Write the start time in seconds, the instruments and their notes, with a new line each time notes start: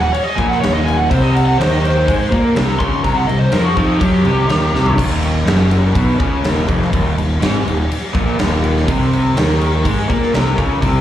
Already playing: picked electric bass D#1
0.00 lead electric guitar F#5
0.13 lead electric guitar C#5, crash
0.24 lead electric guitar D#5
0.35 picked electric bass A#1, overdriven electric guitar A#2, lead electric guitar G#5, kick, crash
0.48 lead electric guitar F#5, snare
0.60 picked electric bass D#1, overdriven electric guitar D#2, lead electric guitar C#5, crash
0.64 snare
0.73 lead electric guitar D#5
0.84 lead electric guitar G#5
0.88 crash
0.97 lead electric guitar F#5
1.10 picked electric bass C2, overdriven electric guitar C3, lead electric guitar C5, kick, crash
1.22 lead electric guitar D#5
1.34 lead electric guitar F#5, crash
1.46 lead electric guitar F#5
1.58 picked electric bass D#2, overdriven electric guitar D#3, lead electric guitar C5, snare, crash
1.71 lead electric guitar D#5
1.82 lead electric guitar C5, crash
2.07 picked electric bass G#2, overdriven electric guitar G#3, kick, crash
2.31 picked electric bass A#2, overdriven electric guitar A#3, kick, crash
2.55 picked electric bass C2, overdriven electric guitar C3, snare, crash
2.79 picked electric bass C#2, overdriven electric guitar C#3, lead electric guitar C6, kick, crash
3.04 picked electric bass C2, overdriven electric guitar C3, lead electric guitar A#5, kick, crash
3.15 lead electric guitar F#5
3.27 picked electric bass C2, overdriven electric guitar C3, lead electric guitar D#5, crash
3.39 lead electric guitar C5
3.52 picked electric bass F2, overdriven electric guitar F3, lead electric guitar A#4, snare, crash
3.64 lead electric guitar F#4
3.76 picked electric bass F2, overdriven electric guitar F3, lead electric guitar D#4, kick, crash
4.00 picked electric bass F#2, overdriven electric guitar F#3, lead electric guitar G4, kick, crash
4.24 picked electric bass C2, overdriven electric guitar C3, crash
4.49 picked electric bass D#2, overdriven electric guitar D#3, snare, crash
4.73 picked electric bass C2, overdriven electric guitar C3, snare
4.86 floor tom
4.98 picked electric bass D#1, overdriven electric guitar D#2, kick, crash
5.23 crash
5.46 picked electric bass F#1, overdriven electric guitar F#2, snare, crash
5.71 crash
5.95 picked electric bass B1, overdriven electric guitar B2, kick, crash
6.20 picked electric bass C#2, overdriven electric guitar C#3, kick, crash
6.43 picked electric bass D#1, overdriven electric guitar D#2, snare, crash
6.68 picked electric bass F1, overdriven electric guitar F2, kick, crash
6.82 snare
6.92 picked electric bass D#1, overdriven electric guitar D#2, kick, crash
7.17 picked electric bass D#1, overdriven electric guitar D#2, crash
7.41 picked electric bass G#1, overdriven electric guitar G#2, snare, crash
7.66 picked electric bass D#1, overdriven electric guitar D#2, crash
7.91 crash
8.14 picked electric bass A#1, overdriven electric guitar A#2, kick, crash
8.39 picked electric bass D#1, overdriven electric guitar D#2, snare, crash
8.64 crash
8.77 snare
8.88 picked electric bass C2, overdriven electric guitar C3, kick, crash
9.13 crash
9.37 picked electric bass D#2, overdriven electric guitar D#3, snare, crash
9.61 crash
9.85 picked electric bass G#2, overdriven electric guitar G#3, kick, crash
10.09 picked electric bass A#2, overdriven electric guitar A#3, kick, crash
10.23 snare
10.33 picked electric bass C2, overdriven electric guitar C3, snare, crash
10.58 picked electric bass C#2, overdriven electric guitar C#3, kick, crash
10.82 picked electric bass C2, overdriven electric guitar C3, kick, crash